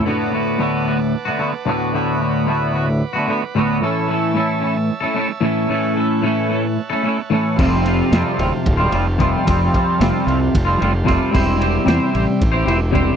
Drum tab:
CC |-------|-------|-------|-------|
RD |-------|-------|-------|-------|
SD |-------|-------|-------|-------|
BD |-------|-------|-------|-------|

CC |x------|-------|x------|
RD |-xxxxxx|xxxxxxx|-xxxxxx|
SD |-oo---o|--o---o|--o-o--|
BD |o---o-o|oo--o-o|o---o-o|